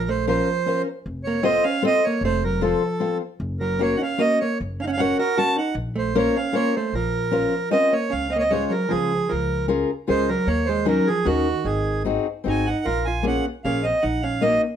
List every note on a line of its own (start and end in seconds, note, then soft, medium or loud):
0.00 0.39 A#1 medium
0.09 0.26 A3 medium
0.09 0.26 C5 medium
0.27 0.83 F3 medium
0.27 0.48 C#4 medium
0.27 0.48 F4 medium
0.27 0.48 A#4 medium
0.27 0.82 C5 medium
0.27 0.48 C5 medium
0.66 0.86 C#4 medium
0.66 0.87 F4 soft
0.66 0.87 A#4 medium
0.66 0.87 C5 medium
1.06 1.56 F1 medium
1.24 1.43 A#3 medium
1.24 1.44 C#5 medium
1.43 1.62 C4 medium
1.43 1.64 C4 medium
1.43 1.64 F4 medium
1.43 1.64 A4 medium
1.43 1.64 C5 medium
1.43 1.64 D#5 medium
1.64 1.82 C#4 medium
1.64 1.83 F5 loud
1.82 2.03 C4 soft
1.82 2.02 C4 loud
1.82 2.03 F4 soft
1.82 2.03 A4 medium
1.82 2.03 C5 medium
1.87 2.05 D#5 loud
2.04 2.22 A#3 medium
2.04 2.23 C#5 medium
2.21 2.72 F1 medium
2.21 2.42 A3 medium
2.21 2.44 C5 medium
2.44 2.61 F#3 medium
2.44 2.62 A#4 medium
2.61 3.19 F3 medium
2.61 2.81 C4 medium
2.61 2.82 F4 medium
2.61 3.18 A4 medium
2.61 2.82 A4 medium
2.61 2.82 C5 medium
3.00 3.21 C4 medium
3.00 3.21 F4 soft
3.00 3.21 A4 soft
3.00 3.21 C5 medium
3.40 3.92 F#1 medium
3.60 3.79 F#3 medium
3.60 3.80 A#4 medium
3.79 3.95 A#3 medium
3.79 4.00 C#4 medium
3.79 4.01 F#4 medium
3.79 4.01 A#4 medium
3.79 4.02 C#5 medium
3.79 3.97 C#5 medium
3.97 4.01 D#4 medium
3.97 4.02 F#5 medium
4.02 4.19 C#4 medium
4.02 4.21 F5 medium
4.18 4.38 A#3 medium
4.18 4.39 C#4 medium
4.18 4.40 F#4 soft
4.18 4.40 A#4 soft
4.18 4.40 C#5 medium
4.18 4.39 D#5 loud
4.41 4.59 A#3 medium
4.41 4.58 C#5 medium
4.61 5.11 F#1 medium
4.80 4.84 C#4 medium
4.80 4.87 D#4 medium
4.80 4.85 F5 medium
4.87 4.96 C#4 medium
4.87 4.91 F#5 medium
4.93 5.01 F5 loud
4.98 5.17 C#4 medium
4.98 5.19 C#4 medium
4.98 5.19 F#4 medium
4.98 5.20 A#4 medium
4.98 5.20 C#5 medium
4.98 5.17 F#5 loud
5.19 5.36 F#4 medium
5.19 5.38 A#4 loud
5.38 5.58 C#4 medium
5.38 5.56 F#4 loud
5.38 5.58 F#4 medium
5.38 5.58 A#4 medium
5.38 5.58 C#5 medium
5.38 5.57 A5 loud
5.56 5.75 D#4 medium
5.56 5.75 F#5 medium
5.75 6.26 A#1 medium
5.96 6.13 A3 medium
5.96 6.17 C5 medium
6.15 6.34 A#3 medium
6.15 6.36 C#4 medium
6.15 6.35 F4 soft
6.15 6.36 A#4 medium
6.15 6.36 C5 medium
6.15 6.37 C#5 medium
6.36 6.54 C#4 medium
6.36 6.55 F5 medium
6.52 6.74 A#3 medium
6.52 6.74 C#4 medium
6.52 6.74 F4 soft
6.52 6.74 A#4 medium
6.52 6.74 C5 medium
6.52 6.75 C#5 loud
6.76 6.93 A3 medium
6.76 6.95 C5 medium
6.93 7.44 A#1 medium
6.93 7.70 F3 medium
6.93 7.69 A#4 medium
7.31 7.52 C#4 medium
7.31 7.53 F4 medium
7.31 7.53 A#4 medium
7.31 7.53 C5 medium
7.71 7.91 C4 medium
7.71 7.93 C#4 medium
7.71 7.93 F4 soft
7.71 7.93 A#4 medium
7.71 7.93 C5 medium
7.71 7.94 D#5 loud
7.93 8.11 A#3 medium
7.93 8.13 C#5 medium
8.10 8.64 C#2 medium
8.10 8.30 C#4 medium
8.10 8.33 F5 medium
8.30 8.36 C4 medium
8.30 8.37 D#5 medium
8.36 8.41 A#3 medium
8.36 8.43 C#5 medium
8.36 8.51 D#5 medium
8.42 8.51 C4 medium
8.50 8.71 G#3 medium
8.50 8.73 C#4 medium
8.50 8.73 F4 medium
8.50 8.74 G#4 soft
8.50 8.73 C5 medium
8.50 8.73 C#5 medium
8.70 8.88 F#3 medium
8.70 8.92 A#4 medium
8.89 9.17 C#2 medium
8.89 9.27 F3 medium
8.89 9.12 C#4 soft
8.89 9.12 F4 soft
8.89 9.32 G#4 medium
8.89 9.12 G#4 soft
8.89 9.12 C5 medium
9.29 9.82 C#2 medium
9.29 9.66 F3 medium
9.29 9.66 A#4 medium
9.68 9.89 C#4 medium
9.68 9.90 F4 medium
9.68 9.90 G#4 medium
9.68 9.89 A#4 medium
10.07 10.34 C#2 medium
10.07 10.28 G#3 medium
10.07 10.29 C#4 medium
10.07 10.28 F4 medium
10.07 10.29 G#4 medium
10.07 10.29 A#4 medium
10.07 10.30 C5 loud
10.29 10.47 F#3 medium
10.29 10.48 A#4 medium
10.47 10.98 D#2 medium
10.47 10.67 A#3 medium
10.47 10.68 C#5 loud
10.66 10.86 G#3 medium
10.66 10.87 C5 medium
10.85 11.07 F#3 medium
10.85 11.07 C#4 medium
10.85 11.06 D#4 medium
10.85 11.07 F#4 medium
10.85 11.07 A#4 medium
10.85 11.09 A#4 medium
11.07 11.26 F3 medium
11.07 11.27 G#4 medium
11.25 11.52 D#2 medium
11.25 11.63 D#3 medium
11.25 11.46 C#4 medium
11.25 11.46 D#4 medium
11.25 11.67 F#4 loud
11.25 11.47 F#4 soft
11.25 11.47 A#4 medium
11.65 12.17 G#1 medium
11.65 12.02 D#3 medium
11.65 12.03 G#4 medium
12.04 12.26 C4 medium
12.04 12.26 D#4 medium
12.04 12.26 F#4 medium
12.04 12.26 G#4 medium
12.44 12.72 G#1 medium
12.44 12.65 C4 soft
12.44 12.66 D#4 soft
12.44 12.66 F#4 soft
12.44 12.66 G#4 medium
12.48 12.66 D#4 medium
12.48 12.69 G#5 medium
12.67 12.86 D#4 medium
12.67 12.86 F#5 medium
12.85 13.38 A#1 medium
12.85 13.05 F4 medium
12.85 13.06 A#4 loud
13.05 13.25 F4 medium
13.05 13.25 G#5 medium
13.23 13.44 A#3 medium
13.23 13.45 C#4 medium
13.23 13.45 F4 medium
13.23 13.45 G#4 medium
13.27 13.45 C#4 medium
13.27 13.46 F#5 medium
13.64 13.90 A#1 medium
13.64 13.85 A#3 medium
13.64 13.85 C#4 soft
13.64 13.84 C#4 medium
13.64 13.85 F4 soft
13.64 13.85 G#4 medium
13.64 13.86 F5 medium
13.83 14.02 C4 medium
13.83 14.04 D#5 medium
14.02 14.55 A#1 medium
14.02 14.22 D#4 medium
14.02 14.24 F#5 medium
14.23 14.42 C#4 medium
14.23 14.43 F5 medium
14.41 14.63 A#3 medium
14.41 14.62 A#3 medium
14.41 14.63 C#4 medium
14.41 14.63 D#4 medium
14.41 14.63 F#4 medium
14.41 14.61 D#5 medium